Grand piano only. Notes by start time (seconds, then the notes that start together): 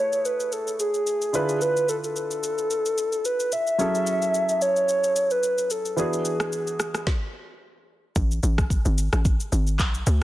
Already playing: A3 E4 G#4 B4 C#5
1.33 D3 D4 E4 F4 B4
3.78 F#3 C#4 E4 G#4 A4
5.96 E3 B3 D4 F#4 G#4